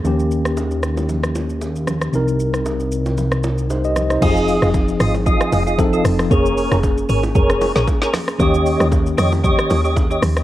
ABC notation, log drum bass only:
X:1
M:4/4
L:1/16
Q:"Swing 16ths" 1/4=115
K:Fm
V:1 name="Log drum bass" clef=bass
z16 | z16 | F,,,3 F,,,3 A,,,3 z F,,,4 F,,,2 | F,,,3 F,,,3 A,,,2 F,,,3 B,,, z4 |
E,,3 E,,3 F,,3 z E,,4 E,,2 |]